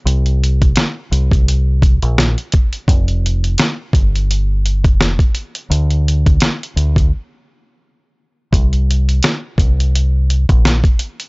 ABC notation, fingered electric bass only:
X:1
M:4/4
L:1/16
Q:"Swing 16ths" 1/4=85
K:Fdor
V:1 name="Fingered electric bass" clef=bass
C,,4 z2 C,,4- C,, B,,,2 z3 | F,,,4 z2 G,,,4- G,,, F,,,2 z3 | D,,4 z2 D,,2 z8 | C,,4 z2 C,,4- C,, B,,,2 z3 |]